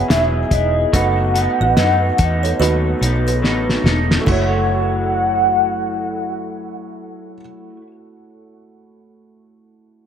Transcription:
0.00 0.39 F#3 medium
0.00 0.39 D#4 medium
0.00 0.40 E4 medium
0.00 0.40 B4 medium
0.00 0.12 F#5 loud
0.08 0.43 E1 medium
0.08 0.51 F#3 medium
0.08 0.51 B3 medium
0.08 0.51 E4 medium
0.08 0.49 G#4 medium
0.08 0.54 E5 medium
0.08 snare loud
0.08 closed hi-hat medium
0.50 0.84 E1 medium
0.50 0.94 E4 soft
0.50 0.92 G#4 soft
0.50 0.94 D#5 medium
0.50 kick medium
0.50 closed hi-hat medium
0.54 0.92 B3 soft
0.93 1.47 F#1 loud
0.93 1.34 F#3 medium
0.93 2.06 A3 medium
0.93 1.35 B3 medium
0.93 2.06 D#4 medium
0.93 1.35 D#4 medium
0.93 2.07 F#4 medium
0.93 1.33 A4 medium
0.93 2.07 B4 medium
0.93 1.34 D#5 medium
0.93 1.33 F#5 medium
0.93 3.41 F#5 medium
0.93 kick loud
0.93 closed hi-hat loud
1.34 1.77 D#4 soft
1.34 1.76 A4 medium
1.34 closed hi-hat medium
1.38 1.77 B3 soft
1.61 1.74 A1 medium
1.61 1.77 B4 medium
1.61 1.76 D#5 medium
1.77 2.10 F#2 medium
1.77 2.18 F#3 medium
1.77 2.19 B3 medium
1.77 2.19 D#4 medium
1.77 2.17 A4 medium
1.77 2.01 B4 medium
1.77 2.00 D#5 medium
1.77 snare medium
1.77 closed hi-hat medium
2.18 2.52 E2 medium
2.18 2.60 B3 soft
2.18 2.61 D#4 soft
2.18 2.60 A4 soft
2.18 kick medium
2.18 closed hi-hat medium
2.43 2.60 A4 medium
2.43 2.59 C#5 medium
2.43 closed hi-hat soft
2.59 2.93 D#2 medium
2.59 3.01 F#3 medium
2.59 3.73 A3 medium
2.59 3.02 B3 medium
2.59 3.73 D#4 medium
2.59 3.02 D#4 medium
2.59 2.84 F#4 medium
2.59 3.73 F#4 medium
2.59 3.00 A4 medium
2.59 2.83 B4 medium
2.59 3.74 B4 medium
2.59 closed hi-hat medium
3.01 3.43 B1 medium
3.01 3.44 D#4 medium
3.01 3.43 A4 medium
3.01 closed hi-hat medium
3.06 3.42 B3 soft
3.27 3.67 G#4 medium
3.27 3.66 B4 medium
3.27 closed hi-hat soft
3.42 3.76 A1 medium
3.42 3.84 F#3 medium
3.42 3.85 B3 medium
3.42 3.85 D#4 medium
3.42 3.83 A4 medium
3.42 snare soft
3.69 snare medium
3.84 4.18 E1 medium
3.84 4.26 B3 soft
3.84 4.27 D#4 soft
3.84 4.26 A4 soft
3.84 snare medium
4.11 snare medium
4.19 7.69 F#3 medium
4.19 7.32 A3 medium
4.25 7.38 F#1 medium
4.25 7.76 A3 medium
4.25 7.36 E4 medium
4.25 7.39 F#4 medium
4.25 6.73 A4 medium
4.25 7.39 F#5 loud
4.25 kick medium
4.25 floor tom medium
4.25 splash medium
4.31 7.81 E4 medium
4.31 7.42 C#5 medium
4.37 7.87 F#4 medium
4.41 7.91 C#5 medium

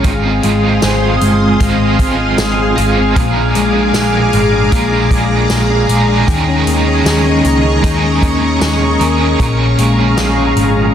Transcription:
0.00 0.43 G#3 medium
0.00 3.15 G#3 medium
0.00 0.12 C#4 medium
0.00 0.82 G#4 medium
0.00 6.24 F5 medium
0.04 0.39 G#1 loud
0.04 1.59 C4 medium
0.04 1.61 F4 loud
0.04 9.36 G#4 medium
0.04 1.61 C5 loud
0.04 3.13 C6 medium
0.04 3.13 D#6 medium
0.04 kick loud
0.04 closed hi-hat medium
0.08 1.62 D#5 loud
0.24 0.62 C4 medium
0.43 0.78 G#1 medium
0.43 1.21 G#3 medium
0.43 closed hi-hat medium
0.63 1.01 C4 medium
0.82 1.17 G#1 medium
0.82 2.38 G#4 medium
0.82 2.27 C5 medium
0.82 snare loud
0.82 closed hi-hat medium
0.82 tambourine medium
1.02 1.40 C4 medium
1.21 1.56 G1 medium
1.21 1.99 G#3 medium
1.21 closed hi-hat medium
1.41 1.79 C4 medium
1.60 1.95 G#1 loud
1.60 3.16 G#2 medium
1.60 2.77 C4 medium
1.60 2.79 F4 medium
1.60 2.77 C5 medium
1.60 2.75 D#5 medium
1.60 kick medium
1.60 closed hi-hat medium
1.80 2.18 C4 medium
1.99 2.34 G#1 loud
1.99 2.77 G#3 medium
1.99 kick medium
1.99 closed hi-hat medium
2.19 2.57 C4 medium
2.38 2.72 G#1 medium
2.38 3.39 G#4 medium
2.38 snare loud
2.38 closed hi-hat medium
2.38 tambourine medium
2.58 2.96 C4 medium
2.76 3.12 G#1 loud
2.76 3.39 G#3 medium
2.76 3.17 F4 medium
2.76 3.17 C5 medium
2.76 3.16 D#5 medium
2.76 closed hi-hat medium
2.97 3.24 C4 medium
3.14 3.50 A#1 loud
3.14 4.71 A#2 medium
3.14 4.72 F3 medium
3.14 4.70 G#3 medium
3.14 10.94 A#5 medium
3.14 6.25 D6 medium
3.14 kick medium
3.14 closed hi-hat medium
3.20 4.73 A#4 loud
3.36 3.74 D4 medium
3.55 3.90 A#1 medium
3.55 4.33 G#3 medium
3.55 closed hi-hat medium
3.75 4.13 D4 medium
3.94 4.28 A#1 loud
3.94 5.50 G#4 medium
3.94 snare loud
3.94 closed hi-hat medium
3.94 tambourine medium
4.14 4.51 D4 medium
4.33 4.67 G#1 medium
4.33 5.11 G#3 medium
4.33 closed hi-hat soft
4.53 4.91 D4 medium
4.70 5.06 A#1 loud
4.70 6.36 A#2 medium
4.70 5.90 G#3 medium
4.70 5.89 D4 medium
4.70 5.88 F4 medium
4.70 5.87 A#4 medium
4.70 6.17 F5 medium
4.70 kick medium
4.70 closed hi-hat medium
4.92 5.30 D4 medium
5.11 5.45 A#1 loud
5.11 5.89 G#3 medium
5.11 kick medium
5.11 closed hi-hat medium
5.31 5.68 D4 medium
5.50 5.84 A#1 loud
5.50 6.71 G#4 medium
5.50 snare loud
5.50 closed hi-hat medium
5.50 tambourine medium
5.70 6.07 D4 medium
5.87 6.23 A#1 loud
5.87 6.67 G#3 medium
5.87 6.26 G#3 medium
5.87 6.29 D4 medium
5.87 6.28 F4 medium
5.87 6.27 A#4 medium
5.87 closed hi-hat medium
6.09 6.36 D4 medium
6.26 6.62 D#2 loud
6.26 7.83 D#3 medium
6.26 9.37 D#5 medium
6.26 7.72 G5 medium
6.26 10.92 C#6 medium
6.26 kick loud
6.26 closed hi-hat medium
6.30 7.85 G#4 medium
6.30 7.85 A#4 loud
6.48 6.86 C#4 medium
6.66 7.01 D#2 loud
6.66 7.45 A#3 medium
6.66 closed hi-hat medium
6.87 7.25 C#4 medium
7.05 7.40 D#2 medium
7.05 8.62 G#4 medium
7.05 snare loud
7.05 closed hi-hat medium
7.05 tambourine medium
7.26 7.65 C#4 medium
7.45 7.79 C#2 medium
7.45 8.23 A#3 medium
7.45 closed hi-hat soft
7.65 8.03 C#4 medium
7.82 8.18 D#2 loud
7.82 9.48 D#3 medium
7.82 9.00 G#3 medium
7.82 9.03 C#4 medium
7.82 9.00 G#4 medium
7.82 8.99 A#4 medium
7.82 kick medium
7.82 closed hi-hat medium
8.04 8.42 C#4 medium
8.22 8.57 D#2 loud
8.22 9.00 A#3 medium
8.22 kick medium
8.22 closed hi-hat medium
8.42 8.81 C#4 medium
8.61 8.96 D#2 loud
8.61 9.48 G#4 medium
8.61 snare loud
8.61 closed hi-hat medium
8.61 tambourine medium
8.81 9.20 C#4 medium
9.00 9.35 D#2 loud
9.00 9.78 A#3 medium
9.00 9.40 G#4 medium
9.00 9.39 A#4 medium
9.00 9.75 A#4 medium
9.00 closed hi-hat medium
9.04 9.40 C#4 soft
9.20 9.59 C#4 medium
9.37 9.74 A#1 loud
9.37 10.94 A#2 medium
9.37 10.94 F3 medium
9.37 10.94 G#3 medium
9.37 10.94 C#4 loud
9.37 10.94 G#4 medium
9.37 10.94 F5 medium
9.37 kick loud
9.37 closed hi-hat medium
9.42 10.94 F4 medium
9.42 10.94 A#4 loud
9.59 9.98 C#4 medium
9.78 10.13 A#1 loud
9.78 10.56 G#3 medium
9.78 closed hi-hat medium
9.98 10.37 C#4 medium
10.17 10.52 A#1 loud
10.17 10.94 G#4 medium
10.17 snare loud
10.17 closed hi-hat medium
10.17 tambourine medium
10.37 10.75 C#4 medium
10.56 10.91 G#1 medium
10.56 10.94 G#3 medium
10.56 closed hi-hat medium
10.76 10.94 C#4 medium

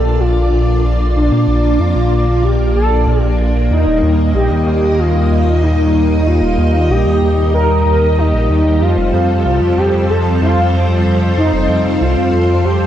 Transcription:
0.00 8.78 A#3 medium
0.00 3.67 D4 medium
0.00 3.67 F4 medium
0.00 0.21 A4 loud
0.00 1.13 A4 medium
0.00 3.67 D5 medium
0.04 0.19 A#1 medium
0.19 0.34 A#1 medium
0.19 0.83 F4 loud
0.36 0.50 A#1 medium
0.52 0.66 A#1 loud
0.68 0.82 A#1 medium
0.84 0.98 A#1 loud
1.00 1.14 A#1 medium
1.15 1.30 A#1 loud
1.15 1.80 D4 medium
1.32 1.46 A#2 medium
1.48 1.62 A#1 medium
1.64 1.78 A#1 medium
1.79 1.94 F2 loud
1.79 2.45 F4 medium
1.95 2.10 A#1 medium
2.11 2.26 A#1 loud
2.27 2.42 A#1 medium
2.43 2.58 A#1 loud
2.43 2.75 G4 loud
2.59 2.74 A#1 medium
2.75 2.90 A#1 medium
2.75 3.21 A4 loud
2.91 3.06 A#1 medium
3.07 3.22 A#1 loud
3.21 3.38 A#1 medium
3.21 3.35 G4 loud
3.39 3.54 A#1 medium
3.55 3.69 A#1 medium
3.71 3.85 D#2 loud
3.71 12.87 G3 medium
3.71 4.31 D#4 medium
3.71 8.78 D#4 medium
3.71 8.78 D#5 medium
3.87 4.01 D#1 medium
4.03 4.17 D#2 loud
4.19 4.33 D#2 medium
4.35 4.49 A#1 loud
4.35 5.00 G4 medium
4.51 4.65 D#2 medium
4.67 4.81 D#2 loud
4.82 4.97 D#2 medium
4.99 5.13 D#2 loud
4.99 5.64 F4 medium
5.14 5.29 D#2 medium
5.30 5.45 D#2 medium
5.46 5.61 D#2 medium
5.62 5.77 D#2 loud
5.62 6.28 D#4 medium
5.78 5.93 D#2 medium
5.94 6.09 D#2 medium
6.10 6.25 D#2 medium
6.26 6.41 D#2 loud
6.26 6.92 F4 loud
6.42 6.57 D#1 medium
6.58 6.73 D#2 medium
6.74 6.89 D#2 medium
6.90 7.05 A#1 loud
6.90 7.53 G4 loud
7.06 7.20 D#2 medium
7.22 7.36 D#2 loud
7.38 7.52 D#2 medium
7.54 7.69 D#2 loud
7.54 8.20 A#4 loud
7.70 7.84 D#2 medium
7.86 8.00 D#2 loud
8.02 8.16 D#2 medium
8.18 8.32 D#2 loud
8.18 8.83 D#4 loud
8.34 8.48 A#1 medium
8.50 8.64 D#2 loud
8.66 8.80 D#2 medium
8.82 8.96 F2 loud
8.82 12.87 C4 medium
8.82 9.79 F4 loud
8.82 12.87 F4 medium
8.82 12.87 A4 medium
8.82 12.87 C5 medium
8.98 9.12 F1 medium
9.14 9.28 F2 medium
9.30 9.44 F2 medium
9.46 9.60 C2 loud
9.62 9.76 F2 medium
9.78 9.92 F2 loud
9.78 10.11 G4 medium
9.94 10.08 F2 medium
10.09 10.24 F2 loud
10.09 10.41 A4 loud
10.25 10.40 F2 medium
10.41 10.56 F2 medium
10.41 11.01 F4 medium
10.57 10.72 F2 medium
10.73 10.88 F2 loud
10.89 11.04 F2 medium
11.05 11.20 F2 loud
11.21 11.36 F2 medium
11.37 11.52 F2 loud
11.37 12.03 D#4 medium
11.53 11.68 F1 medium
11.69 11.84 F2 medium
11.85 11.99 F2 medium
12.01 12.15 C2 loud
12.01 12.66 F4 medium
12.17 12.31 F2 medium
12.33 12.47 F2 loud
12.49 12.63 F2 medium
12.64 12.79 F2 loud
12.64 12.87 G4 loud
12.81 12.87 F2 medium

